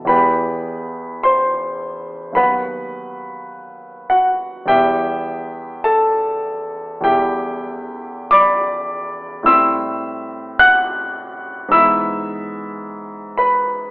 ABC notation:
X:1
M:4/4
L:1/8
Q:1/4=52
K:Em
V:1 name="Grand piano"
[Bgb]2 [cc']2 [Bfb]3 [Ff] | [Geg]2 [Aa]2 [Geg]2 [dbd']2 | [ec'e']2 [ff']2 [ebe']3 [Bb] |]
V:2 name="Grand piano"
[E,,E,B,G]4 [^D,,F,B,F]4 | [E,,G,B,E]4 [E,,G,B,E]4 | [A,,G,CE]4 [^G,,E,B,E]4 |]